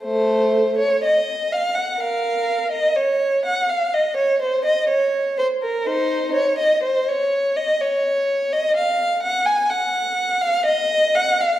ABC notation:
X:1
M:4/4
L:1/16
Q:1/4=62
K:Db
V:1 name="Violin"
[=A,c]3 d e2 f g [Bf]3 e d2 g f | e d c e d2 c B [Ec]2 d e c d2 e | d3 e f2 g a g3 f e2 g f |]